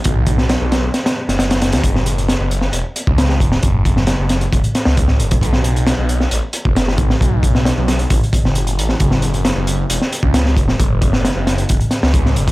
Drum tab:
HH |x-x-x-x-xx-xxxxx|x-xxx-x-x-x-x-x-|x-x-x-xxxxx-x-xx|x-xxx-x-x-x-x-x-|
SD |---oo-o-oo-ooooo|-o--o--o----oo-o|---oo-o---oo-o--|-o--o--o----oo-o|
BD |o-o-------------|o----------o--o-|o-o-----o---o--o|o----------o--o-|

HH |x-x-x-xxxxx-xxx-|x-xxx-x-x-x-x-x-|x-x-x-xxxxx-x-xx|
SD |---oo-o----o---o|-o--o----o--oo-o|---oo-o---oo-o--|
BD |o-o-----o-o-----|o----------o--o-|o-o-----o---o--o|